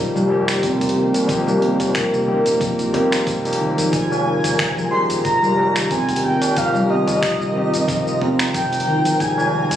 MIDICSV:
0, 0, Header, 1, 9, 480
1, 0, Start_track
1, 0, Key_signature, -4, "minor"
1, 0, Tempo, 659341
1, 941, Time_signature, 4, 2, 24, 8
1, 7106, End_track
2, 0, Start_track
2, 0, Title_t, "Soft synth lead"
2, 0, Program_c, 0, 80
2, 2851, Note_on_c, 0, 80, 107
2, 3547, Note_off_c, 0, 80, 0
2, 3573, Note_on_c, 0, 84, 114
2, 3675, Note_off_c, 0, 84, 0
2, 3810, Note_on_c, 0, 82, 106
2, 4266, Note_off_c, 0, 82, 0
2, 4301, Note_on_c, 0, 80, 96
2, 4524, Note_off_c, 0, 80, 0
2, 4542, Note_on_c, 0, 79, 100
2, 4784, Note_on_c, 0, 77, 95
2, 4795, Note_off_c, 0, 79, 0
2, 5022, Note_off_c, 0, 77, 0
2, 5026, Note_on_c, 0, 75, 92
2, 5954, Note_off_c, 0, 75, 0
2, 6224, Note_on_c, 0, 79, 102
2, 6700, Note_on_c, 0, 80, 115
2, 6711, Note_off_c, 0, 79, 0
2, 7106, Note_off_c, 0, 80, 0
2, 7106, End_track
3, 0, Start_track
3, 0, Title_t, "Synth texture"
3, 0, Program_c, 1, 99
3, 2862, Note_on_c, 1, 70, 80
3, 7106, Note_off_c, 1, 70, 0
3, 7106, End_track
4, 0, Start_track
4, 0, Title_t, "Ambient pad"
4, 0, Program_c, 2, 92
4, 0, Note_on_c, 2, 51, 86
4, 0, Note_on_c, 2, 58, 88
4, 0, Note_on_c, 2, 63, 67
4, 0, Note_on_c, 2, 70, 86
4, 0, Note_on_c, 2, 72, 80
4, 101, Note_off_c, 2, 63, 0
4, 3357, Note_on_c, 2, 65, 89
4, 4459, Note_off_c, 2, 58, 0
4, 4677, Note_off_c, 2, 70, 0
4, 7106, Note_off_c, 2, 51, 0
4, 7106, Note_off_c, 2, 65, 0
4, 7106, Note_off_c, 2, 72, 0
4, 7106, End_track
5, 0, Start_track
5, 0, Title_t, "Tine electric piano"
5, 0, Program_c, 3, 4
5, 0, Control_c, 3, 64, 127
5, 0, Note_on_c, 3, 55, 87
5, 0, Note_on_c, 3, 58, 82
5, 0, Note_on_c, 3, 60, 81
5, 0, Note_on_c, 3, 63, 77
5, 0, Note_on_c, 3, 67, 91
5, 189, Note_off_c, 3, 55, 0
5, 191, Note_off_c, 3, 58, 0
5, 192, Note_off_c, 3, 60, 0
5, 194, Note_off_c, 3, 63, 0
5, 196, Note_off_c, 3, 67, 0
5, 204, Note_on_c, 3, 55, 84
5, 212, Note_on_c, 3, 58, 79
5, 219, Note_on_c, 3, 60, 80
5, 226, Note_on_c, 3, 63, 79
5, 234, Note_on_c, 3, 67, 98
5, 906, Note_off_c, 3, 55, 0
5, 910, Note_off_c, 3, 58, 0
5, 914, Note_off_c, 3, 60, 0
5, 917, Note_off_c, 3, 63, 0
5, 921, Note_off_c, 3, 67, 0
5, 924, Note_on_c, 3, 55, 91
5, 932, Note_on_c, 3, 58, 90
5, 938, Note_on_c, 3, 60, 81
5, 946, Note_on_c, 3, 63, 86
5, 954, Note_on_c, 3, 67, 102
5, 1626, Note_off_c, 3, 55, 0
5, 1630, Note_off_c, 3, 58, 0
5, 1633, Note_off_c, 3, 60, 0
5, 1637, Note_off_c, 3, 63, 0
5, 1641, Note_off_c, 3, 67, 0
5, 1652, Note_on_c, 3, 55, 72
5, 1655, Note_on_c, 3, 58, 66
5, 1660, Note_on_c, 3, 60, 67
5, 1662, Note_on_c, 3, 63, 69
5, 1664, Note_on_c, 3, 67, 85
5, 2114, Note_off_c, 3, 55, 0
5, 2116, Note_off_c, 3, 58, 0
5, 2118, Note_off_c, 3, 60, 0
5, 2119, Note_off_c, 3, 63, 0
5, 2121, Note_off_c, 3, 67, 0
5, 2129, Note_on_c, 3, 55, 88
5, 2136, Note_on_c, 3, 58, 83
5, 2138, Note_on_c, 3, 60, 86
5, 2143, Note_on_c, 3, 63, 78
5, 2145, Note_on_c, 3, 67, 93
5, 2475, Note_off_c, 3, 55, 0
5, 2478, Note_off_c, 3, 58, 0
5, 2479, Note_off_c, 3, 60, 0
5, 2481, Note_off_c, 3, 63, 0
5, 2483, Note_off_c, 3, 67, 0
5, 2506, Note_on_c, 3, 55, 76
5, 2511, Note_on_c, 3, 58, 75
5, 2512, Note_on_c, 3, 60, 77
5, 2516, Note_on_c, 3, 63, 77
5, 2519, Note_on_c, 3, 67, 85
5, 2831, Note_off_c, 3, 55, 0
5, 2834, Note_off_c, 3, 58, 0
5, 2834, Note_off_c, 3, 60, 0
5, 2837, Note_off_c, 3, 63, 0
5, 2838, Note_off_c, 3, 67, 0
5, 2848, Note_on_c, 3, 53, 83
5, 2855, Note_on_c, 3, 56, 75
5, 2860, Note_on_c, 3, 60, 76
5, 2868, Control_c, 3, 64, 0
5, 2869, Note_on_c, 3, 63, 73
5, 2876, Note_on_c, 3, 55, 85
5, 2982, Control_c, 3, 64, 127
5, 3548, Note_off_c, 3, 53, 0
5, 3551, Note_off_c, 3, 56, 0
5, 3554, Note_off_c, 3, 60, 0
5, 3559, Note_off_c, 3, 63, 0
5, 3562, Note_off_c, 3, 55, 0
5, 3574, Note_on_c, 3, 53, 89
5, 3576, Note_on_c, 3, 56, 81
5, 3579, Note_on_c, 3, 60, 80
5, 3584, Note_on_c, 3, 63, 77
5, 3588, Note_on_c, 3, 67, 91
5, 4031, Note_off_c, 3, 53, 0
5, 4032, Note_off_c, 3, 56, 0
5, 4034, Note_off_c, 3, 60, 0
5, 4036, Note_off_c, 3, 63, 0
5, 4038, Note_off_c, 3, 67, 0
5, 4049, Note_on_c, 3, 53, 87
5, 4062, Note_on_c, 3, 60, 78
5, 4069, Note_on_c, 3, 63, 79
5, 4077, Note_on_c, 3, 55, 99
5, 4749, Note_off_c, 3, 53, 0
5, 4755, Note_off_c, 3, 60, 0
5, 4759, Note_off_c, 3, 63, 0
5, 4763, Note_off_c, 3, 55, 0
5, 4765, Note_on_c, 3, 53, 88
5, 4779, Note_on_c, 3, 60, 87
5, 4787, Note_on_c, 3, 63, 86
5, 4793, Note_on_c, 3, 67, 109
5, 5466, Note_off_c, 3, 53, 0
5, 5474, Note_off_c, 3, 60, 0
5, 5478, Note_off_c, 3, 63, 0
5, 5480, Note_off_c, 3, 67, 0
5, 5485, Note_on_c, 3, 53, 73
5, 5499, Note_on_c, 3, 60, 72
5, 5505, Note_on_c, 3, 63, 66
5, 5514, Note_on_c, 3, 67, 85
5, 6667, Note_off_c, 3, 53, 0
5, 6674, Note_off_c, 3, 60, 0
5, 6677, Note_off_c, 3, 63, 0
5, 6681, Note_off_c, 3, 67, 0
5, 6681, Note_on_c, 3, 53, 85
5, 6690, Note_on_c, 3, 56, 79
5, 6698, Note_on_c, 3, 60, 79
5, 6704, Note_on_c, 3, 63, 77
5, 6711, Note_on_c, 3, 55, 86
5, 7106, Note_off_c, 3, 53, 0
5, 7106, Note_off_c, 3, 55, 0
5, 7106, Note_off_c, 3, 56, 0
5, 7106, Note_off_c, 3, 60, 0
5, 7106, Note_off_c, 3, 63, 0
5, 7106, End_track
6, 0, Start_track
6, 0, Title_t, "Handpan"
6, 0, Program_c, 4, 114
6, 0, Note_on_c, 4, 53, 110
6, 106, Note_off_c, 4, 53, 0
6, 114, Note_on_c, 4, 55, 105
6, 216, Note_off_c, 4, 55, 0
6, 461, Note_on_c, 4, 60, 102
6, 690, Note_off_c, 4, 60, 0
6, 699, Note_on_c, 4, 60, 78
6, 774, Note_off_c, 4, 60, 0
6, 938, Note_on_c, 4, 53, 101
6, 1064, Note_off_c, 4, 53, 0
6, 1069, Note_on_c, 4, 55, 97
6, 1174, Note_off_c, 4, 55, 0
6, 1181, Note_on_c, 4, 60, 97
6, 1306, Note_off_c, 4, 60, 0
6, 1310, Note_on_c, 4, 53, 77
6, 1538, Note_off_c, 4, 53, 0
6, 1551, Note_on_c, 4, 48, 80
6, 1889, Note_off_c, 4, 48, 0
6, 1901, Note_on_c, 4, 53, 108
6, 2026, Note_off_c, 4, 53, 0
6, 2140, Note_on_c, 4, 60, 94
6, 2265, Note_off_c, 4, 60, 0
6, 2381, Note_on_c, 4, 53, 86
6, 2506, Note_off_c, 4, 53, 0
6, 2621, Note_on_c, 4, 51, 71
6, 2739, Note_off_c, 4, 51, 0
6, 2754, Note_on_c, 4, 53, 100
6, 2856, Note_off_c, 4, 53, 0
6, 2863, Note_on_c, 4, 53, 102
6, 2987, Note_off_c, 4, 53, 0
6, 3344, Note_on_c, 4, 53, 101
6, 3461, Note_off_c, 4, 53, 0
6, 3474, Note_on_c, 4, 53, 104
6, 3811, Note_off_c, 4, 53, 0
6, 3822, Note_on_c, 4, 53, 105
6, 3946, Note_off_c, 4, 53, 0
6, 3952, Note_on_c, 4, 55, 95
6, 4055, Note_off_c, 4, 55, 0
6, 4305, Note_on_c, 4, 60, 102
6, 4532, Note_off_c, 4, 60, 0
6, 4544, Note_on_c, 4, 60, 78
6, 4617, Note_off_c, 4, 60, 0
6, 4780, Note_on_c, 4, 53, 101
6, 4905, Note_off_c, 4, 53, 0
6, 4912, Note_on_c, 4, 55, 100
6, 5015, Note_off_c, 4, 55, 0
6, 5020, Note_on_c, 4, 60, 94
6, 5145, Note_off_c, 4, 60, 0
6, 5150, Note_on_c, 4, 53, 76
6, 5378, Note_off_c, 4, 53, 0
6, 5388, Note_on_c, 4, 48, 81
6, 5728, Note_off_c, 4, 48, 0
6, 5735, Note_on_c, 4, 53, 112
6, 5863, Note_off_c, 4, 53, 0
6, 5980, Note_on_c, 4, 60, 99
6, 6105, Note_off_c, 4, 60, 0
6, 6218, Note_on_c, 4, 53, 81
6, 6344, Note_off_c, 4, 53, 0
6, 6460, Note_on_c, 4, 51, 81
6, 6579, Note_off_c, 4, 51, 0
6, 6590, Note_on_c, 4, 53, 105
6, 6691, Note_off_c, 4, 53, 0
6, 6700, Note_on_c, 4, 53, 101
6, 6825, Note_off_c, 4, 53, 0
6, 7106, End_track
7, 0, Start_track
7, 0, Title_t, "Analog synth bass"
7, 0, Program_c, 5, 38
7, 0, Note_on_c, 5, 27, 101
7, 78, Note_off_c, 5, 27, 0
7, 110, Note_on_c, 5, 29, 95
7, 432, Note_off_c, 5, 29, 0
7, 460, Note_on_c, 5, 29, 98
7, 798, Note_off_c, 5, 29, 0
7, 940, Note_on_c, 5, 29, 92
7, 1279, Note_off_c, 5, 29, 0
7, 1309, Note_on_c, 5, 29, 82
7, 1631, Note_off_c, 5, 29, 0
7, 1660, Note_on_c, 5, 27, 109
7, 2032, Note_on_c, 5, 36, 88
7, 2043, Note_off_c, 5, 27, 0
7, 2123, Note_off_c, 5, 36, 0
7, 2381, Note_on_c, 5, 29, 97
7, 2719, Note_off_c, 5, 29, 0
7, 2863, Note_on_c, 5, 29, 101
7, 3200, Note_off_c, 5, 29, 0
7, 3230, Note_on_c, 5, 29, 83
7, 3552, Note_off_c, 5, 29, 0
7, 3580, Note_on_c, 5, 27, 108
7, 3918, Note_off_c, 5, 27, 0
7, 3954, Note_on_c, 5, 29, 88
7, 4274, Note_off_c, 5, 29, 0
7, 4302, Note_on_c, 5, 29, 104
7, 4640, Note_off_c, 5, 29, 0
7, 4782, Note_on_c, 5, 29, 99
7, 5120, Note_off_c, 5, 29, 0
7, 5148, Note_on_c, 5, 29, 84
7, 5471, Note_off_c, 5, 29, 0
7, 5500, Note_on_c, 5, 27, 105
7, 5839, Note_off_c, 5, 27, 0
7, 5869, Note_on_c, 5, 29, 89
7, 6191, Note_off_c, 5, 29, 0
7, 6221, Note_on_c, 5, 29, 103
7, 6559, Note_off_c, 5, 29, 0
7, 6701, Note_on_c, 5, 29, 96
7, 7039, Note_off_c, 5, 29, 0
7, 7070, Note_on_c, 5, 29, 82
7, 7106, Note_off_c, 5, 29, 0
7, 7106, End_track
8, 0, Start_track
8, 0, Title_t, "Tabla"
8, 110, Note_on_c, 9, 63, 41
8, 119, Note_on_c, 9, 60, 58
8, 183, Note_off_c, 9, 63, 0
8, 192, Note_off_c, 9, 60, 0
8, 220, Note_on_c, 9, 60, 60
8, 220, Note_on_c, 9, 64, 88
8, 293, Note_off_c, 9, 60, 0
8, 293, Note_off_c, 9, 64, 0
8, 455, Note_on_c, 9, 63, 59
8, 528, Note_off_c, 9, 63, 0
8, 831, Note_on_c, 9, 60, 70
8, 904, Note_off_c, 9, 60, 0
8, 1072, Note_on_c, 9, 60, 75
8, 1145, Note_off_c, 9, 60, 0
8, 1305, Note_on_c, 9, 63, 35
8, 1307, Note_on_c, 9, 60, 61
8, 1377, Note_off_c, 9, 63, 0
8, 1380, Note_off_c, 9, 60, 0
8, 1786, Note_on_c, 9, 64, 88
8, 1859, Note_off_c, 9, 64, 0
8, 2140, Note_on_c, 9, 63, 41
8, 2213, Note_off_c, 9, 63, 0
8, 2276, Note_on_c, 9, 60, 34
8, 2349, Note_off_c, 9, 60, 0
8, 2379, Note_on_c, 9, 64, 80
8, 2452, Note_off_c, 9, 64, 0
8, 2516, Note_on_c, 9, 60, 39
8, 2588, Note_off_c, 9, 60, 0
8, 2622, Note_on_c, 9, 63, 36
8, 2695, Note_off_c, 9, 63, 0
8, 2998, Note_on_c, 9, 60, 85
8, 3071, Note_off_c, 9, 60, 0
8, 3234, Note_on_c, 9, 60, 60
8, 3239, Note_on_c, 9, 63, 41
8, 3307, Note_off_c, 9, 60, 0
8, 3311, Note_off_c, 9, 63, 0
8, 3712, Note_on_c, 9, 64, 84
8, 3785, Note_off_c, 9, 64, 0
8, 3821, Note_on_c, 9, 64, 81
8, 3893, Note_off_c, 9, 64, 0
8, 3951, Note_on_c, 9, 63, 37
8, 3952, Note_on_c, 9, 60, 64
8, 4024, Note_off_c, 9, 60, 0
8, 4024, Note_off_c, 9, 63, 0
8, 4059, Note_on_c, 9, 60, 63
8, 4063, Note_on_c, 9, 64, 80
8, 4132, Note_off_c, 9, 60, 0
8, 4135, Note_off_c, 9, 64, 0
8, 4300, Note_on_c, 9, 63, 55
8, 4373, Note_off_c, 9, 63, 0
8, 4671, Note_on_c, 9, 60, 83
8, 4744, Note_off_c, 9, 60, 0
8, 4909, Note_on_c, 9, 60, 80
8, 4982, Note_off_c, 9, 60, 0
8, 5145, Note_on_c, 9, 60, 63
8, 5218, Note_off_c, 9, 60, 0
8, 5635, Note_on_c, 9, 64, 89
8, 5708, Note_off_c, 9, 64, 0
8, 5975, Note_on_c, 9, 63, 42
8, 6048, Note_off_c, 9, 63, 0
8, 6219, Note_on_c, 9, 64, 74
8, 6292, Note_off_c, 9, 64, 0
8, 6347, Note_on_c, 9, 60, 39
8, 6420, Note_off_c, 9, 60, 0
8, 6827, Note_on_c, 9, 60, 91
8, 6900, Note_off_c, 9, 60, 0
8, 7071, Note_on_c, 9, 63, 36
8, 7074, Note_on_c, 9, 60, 59
8, 7106, Note_off_c, 9, 60, 0
8, 7106, Note_off_c, 9, 63, 0
8, 7106, End_track
9, 0, Start_track
9, 0, Title_t, "Drums"
9, 120, Note_on_c, 9, 82, 33
9, 193, Note_off_c, 9, 82, 0
9, 350, Note_on_c, 9, 26, 76
9, 350, Note_on_c, 9, 42, 45
9, 356, Note_on_c, 9, 82, 59
9, 423, Note_off_c, 9, 26, 0
9, 423, Note_off_c, 9, 42, 0
9, 429, Note_off_c, 9, 82, 0
9, 459, Note_on_c, 9, 36, 94
9, 461, Note_on_c, 9, 42, 59
9, 467, Note_on_c, 9, 82, 53
9, 532, Note_off_c, 9, 36, 0
9, 534, Note_off_c, 9, 42, 0
9, 540, Note_off_c, 9, 82, 0
9, 592, Note_on_c, 9, 42, 46
9, 592, Note_on_c, 9, 45, 85
9, 598, Note_on_c, 9, 82, 30
9, 648, Note_off_c, 9, 42, 0
9, 648, Note_on_c, 9, 42, 58
9, 665, Note_off_c, 9, 45, 0
9, 671, Note_off_c, 9, 82, 0
9, 721, Note_off_c, 9, 42, 0
9, 833, Note_on_c, 9, 42, 43
9, 839, Note_on_c, 9, 82, 63
9, 905, Note_off_c, 9, 42, 0
9, 912, Note_off_c, 9, 82, 0
9, 938, Note_on_c, 9, 36, 101
9, 939, Note_on_c, 9, 42, 58
9, 946, Note_on_c, 9, 82, 50
9, 1011, Note_off_c, 9, 36, 0
9, 1012, Note_off_c, 9, 42, 0
9, 1018, Note_off_c, 9, 82, 0
9, 1079, Note_on_c, 9, 82, 32
9, 1151, Note_off_c, 9, 82, 0
9, 1180, Note_on_c, 9, 42, 32
9, 1253, Note_off_c, 9, 42, 0
9, 1310, Note_on_c, 9, 42, 47
9, 1310, Note_on_c, 9, 45, 80
9, 1316, Note_on_c, 9, 82, 59
9, 1382, Note_off_c, 9, 42, 0
9, 1382, Note_off_c, 9, 45, 0
9, 1389, Note_off_c, 9, 82, 0
9, 1418, Note_on_c, 9, 26, 81
9, 1418, Note_on_c, 9, 42, 61
9, 1419, Note_on_c, 9, 36, 99
9, 1424, Note_on_c, 9, 82, 53
9, 1491, Note_off_c, 9, 26, 0
9, 1491, Note_off_c, 9, 36, 0
9, 1491, Note_off_c, 9, 42, 0
9, 1497, Note_off_c, 9, 82, 0
9, 1556, Note_on_c, 9, 82, 31
9, 1629, Note_off_c, 9, 82, 0
9, 1789, Note_on_c, 9, 42, 44
9, 1796, Note_on_c, 9, 82, 62
9, 1862, Note_off_c, 9, 42, 0
9, 1868, Note_off_c, 9, 82, 0
9, 1899, Note_on_c, 9, 36, 103
9, 1901, Note_on_c, 9, 42, 56
9, 1907, Note_on_c, 9, 82, 55
9, 1972, Note_off_c, 9, 36, 0
9, 1973, Note_off_c, 9, 42, 0
9, 1980, Note_off_c, 9, 82, 0
9, 2031, Note_on_c, 9, 42, 33
9, 2038, Note_on_c, 9, 82, 33
9, 2104, Note_off_c, 9, 42, 0
9, 2110, Note_off_c, 9, 82, 0
9, 2141, Note_on_c, 9, 42, 31
9, 2141, Note_on_c, 9, 45, 78
9, 2213, Note_off_c, 9, 42, 0
9, 2213, Note_off_c, 9, 45, 0
9, 2274, Note_on_c, 9, 26, 74
9, 2274, Note_on_c, 9, 42, 46
9, 2280, Note_on_c, 9, 82, 62
9, 2347, Note_off_c, 9, 26, 0
9, 2347, Note_off_c, 9, 42, 0
9, 2353, Note_off_c, 9, 82, 0
9, 2379, Note_on_c, 9, 36, 100
9, 2383, Note_on_c, 9, 42, 57
9, 2389, Note_on_c, 9, 82, 57
9, 2452, Note_off_c, 9, 36, 0
9, 2456, Note_off_c, 9, 42, 0
9, 2462, Note_off_c, 9, 82, 0
9, 2514, Note_on_c, 9, 42, 43
9, 2520, Note_on_c, 9, 82, 32
9, 2568, Note_off_c, 9, 42, 0
9, 2568, Note_on_c, 9, 42, 58
9, 2593, Note_off_c, 9, 82, 0
9, 2640, Note_off_c, 9, 42, 0
9, 2753, Note_on_c, 9, 42, 46
9, 2753, Note_on_c, 9, 45, 61
9, 2759, Note_on_c, 9, 82, 62
9, 2825, Note_off_c, 9, 42, 0
9, 2825, Note_off_c, 9, 45, 0
9, 2832, Note_off_c, 9, 82, 0
9, 2860, Note_on_c, 9, 42, 58
9, 2861, Note_on_c, 9, 36, 101
9, 2867, Note_on_c, 9, 82, 56
9, 2933, Note_off_c, 9, 42, 0
9, 2934, Note_off_c, 9, 36, 0
9, 2940, Note_off_c, 9, 82, 0
9, 3000, Note_on_c, 9, 82, 35
9, 3073, Note_off_c, 9, 82, 0
9, 3233, Note_on_c, 9, 42, 44
9, 3233, Note_on_c, 9, 45, 74
9, 3240, Note_on_c, 9, 82, 69
9, 3306, Note_off_c, 9, 42, 0
9, 3306, Note_off_c, 9, 45, 0
9, 3312, Note_off_c, 9, 82, 0
9, 3342, Note_on_c, 9, 36, 100
9, 3343, Note_on_c, 9, 26, 83
9, 3343, Note_on_c, 9, 42, 55
9, 3349, Note_on_c, 9, 82, 58
9, 3414, Note_off_c, 9, 36, 0
9, 3415, Note_off_c, 9, 26, 0
9, 3415, Note_off_c, 9, 42, 0
9, 3422, Note_off_c, 9, 82, 0
9, 3481, Note_on_c, 9, 82, 33
9, 3554, Note_off_c, 9, 82, 0
9, 3712, Note_on_c, 9, 42, 45
9, 3718, Note_on_c, 9, 82, 68
9, 3784, Note_off_c, 9, 42, 0
9, 3791, Note_off_c, 9, 82, 0
9, 3821, Note_on_c, 9, 42, 59
9, 3822, Note_on_c, 9, 36, 108
9, 3827, Note_on_c, 9, 82, 54
9, 3893, Note_off_c, 9, 42, 0
9, 3894, Note_off_c, 9, 36, 0
9, 3900, Note_off_c, 9, 82, 0
9, 3958, Note_on_c, 9, 82, 32
9, 4031, Note_off_c, 9, 82, 0
9, 4191, Note_on_c, 9, 26, 78
9, 4191, Note_on_c, 9, 42, 45
9, 4198, Note_on_c, 9, 82, 65
9, 4264, Note_off_c, 9, 26, 0
9, 4264, Note_off_c, 9, 42, 0
9, 4270, Note_off_c, 9, 82, 0
9, 4300, Note_on_c, 9, 42, 58
9, 4301, Note_on_c, 9, 36, 99
9, 4306, Note_on_c, 9, 82, 54
9, 4373, Note_off_c, 9, 42, 0
9, 4374, Note_off_c, 9, 36, 0
9, 4379, Note_off_c, 9, 82, 0
9, 4431, Note_on_c, 9, 42, 44
9, 4431, Note_on_c, 9, 45, 78
9, 4437, Note_on_c, 9, 82, 35
9, 4486, Note_off_c, 9, 42, 0
9, 4486, Note_on_c, 9, 42, 61
9, 4504, Note_off_c, 9, 45, 0
9, 4510, Note_off_c, 9, 82, 0
9, 4559, Note_off_c, 9, 42, 0
9, 4671, Note_on_c, 9, 42, 48
9, 4677, Note_on_c, 9, 82, 65
9, 4744, Note_off_c, 9, 42, 0
9, 4750, Note_off_c, 9, 82, 0
9, 4779, Note_on_c, 9, 42, 55
9, 4781, Note_on_c, 9, 36, 111
9, 4786, Note_on_c, 9, 82, 57
9, 4852, Note_off_c, 9, 42, 0
9, 4854, Note_off_c, 9, 36, 0
9, 4858, Note_off_c, 9, 82, 0
9, 4917, Note_on_c, 9, 82, 37
9, 4990, Note_off_c, 9, 82, 0
9, 5151, Note_on_c, 9, 42, 45
9, 5151, Note_on_c, 9, 45, 74
9, 5158, Note_on_c, 9, 82, 64
9, 5224, Note_off_c, 9, 42, 0
9, 5224, Note_off_c, 9, 45, 0
9, 5230, Note_off_c, 9, 82, 0
9, 5260, Note_on_c, 9, 26, 85
9, 5260, Note_on_c, 9, 42, 55
9, 5261, Note_on_c, 9, 36, 110
9, 5267, Note_on_c, 9, 82, 58
9, 5333, Note_off_c, 9, 26, 0
9, 5333, Note_off_c, 9, 36, 0
9, 5333, Note_off_c, 9, 42, 0
9, 5339, Note_off_c, 9, 82, 0
9, 5399, Note_on_c, 9, 82, 36
9, 5471, Note_off_c, 9, 82, 0
9, 5632, Note_on_c, 9, 42, 42
9, 5638, Note_on_c, 9, 82, 69
9, 5704, Note_off_c, 9, 42, 0
9, 5711, Note_off_c, 9, 82, 0
9, 5740, Note_on_c, 9, 36, 111
9, 5740, Note_on_c, 9, 42, 55
9, 5747, Note_on_c, 9, 82, 58
9, 5813, Note_off_c, 9, 36, 0
9, 5813, Note_off_c, 9, 42, 0
9, 5819, Note_off_c, 9, 82, 0
9, 5878, Note_on_c, 9, 82, 34
9, 5951, Note_off_c, 9, 82, 0
9, 5980, Note_on_c, 9, 45, 75
9, 6053, Note_off_c, 9, 45, 0
9, 6110, Note_on_c, 9, 26, 81
9, 6110, Note_on_c, 9, 42, 47
9, 6117, Note_on_c, 9, 82, 66
9, 6183, Note_off_c, 9, 26, 0
9, 6183, Note_off_c, 9, 42, 0
9, 6190, Note_off_c, 9, 82, 0
9, 6220, Note_on_c, 9, 36, 101
9, 6221, Note_on_c, 9, 42, 59
9, 6227, Note_on_c, 9, 82, 58
9, 6293, Note_off_c, 9, 36, 0
9, 6293, Note_off_c, 9, 42, 0
9, 6300, Note_off_c, 9, 82, 0
9, 6352, Note_on_c, 9, 42, 43
9, 6359, Note_on_c, 9, 82, 34
9, 6406, Note_off_c, 9, 42, 0
9, 6406, Note_on_c, 9, 42, 58
9, 6432, Note_off_c, 9, 82, 0
9, 6479, Note_off_c, 9, 42, 0
9, 6591, Note_on_c, 9, 42, 46
9, 6597, Note_on_c, 9, 82, 70
9, 6663, Note_off_c, 9, 42, 0
9, 6670, Note_off_c, 9, 82, 0
9, 6700, Note_on_c, 9, 36, 107
9, 6701, Note_on_c, 9, 42, 53
9, 6707, Note_on_c, 9, 82, 60
9, 6773, Note_off_c, 9, 36, 0
9, 6773, Note_off_c, 9, 42, 0
9, 6780, Note_off_c, 9, 82, 0
9, 6837, Note_on_c, 9, 82, 36
9, 6910, Note_off_c, 9, 82, 0
9, 7070, Note_on_c, 9, 42, 41
9, 7070, Note_on_c, 9, 45, 76
9, 7076, Note_on_c, 9, 82, 68
9, 7106, Note_off_c, 9, 42, 0
9, 7106, Note_off_c, 9, 45, 0
9, 7106, Note_off_c, 9, 82, 0
9, 7106, End_track
0, 0, End_of_file